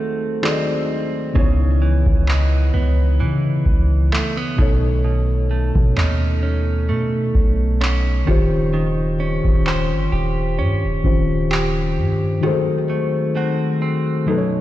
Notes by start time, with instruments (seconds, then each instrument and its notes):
Already playing: synth keys D#3 D#4 F#4 G#4 A4 C5, clean electric guitar D#3 A3 C4 F#4
0.42 synth keys D#3 D#4 F#4 G#4 A4 D5, clean electric guitar C4, clap
0.51 synth keys D#5
1.33 808-style bass C#2, synth keys C#3 B3 D#4, clean electric guitar C#3, kick
1.37 synth keys E4 C#5
1.82 clean electric guitar E3
2.06 808-style bass C#2, kick
2.28 clean electric guitar E3 B3 D#4, clap
2.74 808-style bass C#2, clean electric guitar B3
3.20 808-style bass C#3, clean electric guitar E3
3.66 808-style bass C#2, kick
4.13 clean electric guitar A3, clap
4.37 clean electric guitar B3
4.56 808-style bass B1, synth keys B2 B3 D#4, clean electric guitar B2, kick
4.60 synth keys A4 C#5
5.04 clean electric guitar B2
5.51 clean electric guitar A3
5.75 808-style bass B2, kick
5.97 808-style bass D#2, clean electric guitar A3 C#4 D#4, clap
6.43 clean electric guitar C#4
6.89 808-style bass B2, clean electric guitar A3
7.35 808-style bass B1, kick
7.81 clean electric guitar C#4, clap
8.25 808-style bass D#1, synth keys D#3 C#4 F4, clean electric guitar D#3, kick
8.29 synth keys G4 C5
8.74 clean electric guitar D#3
9.20 clean electric guitar C#4
9.45 808-style bass D#1, kick
9.66 clean electric guitar C#4 G4 C5, clap
9.92 808-style bass G1
10.12 808-style bass D#1, clean electric guitar G4
10.59 808-style bass G2, clean electric guitar C#4
10.84 808-style bass D#1
11.03 808-style bass D#1, synth keys D#3 C#4 F4 G4 C5, kick
11.51 clean electric guitar G4, clap
11.97 808-style bass G2
12.41 synth keys D#3 D#4 F#4 G#4, clean electric guitar D#3
12.45 synth keys A4 C5
12.90 clean electric guitar A3
13.35 clean electric guitar A3 C4 F#4
13.82 clean electric guitar C4
14.25 synth keys B2 F#3 D#4, clean electric guitar B2
14.29 synth keys A4 B4
14.37 synth keys C#5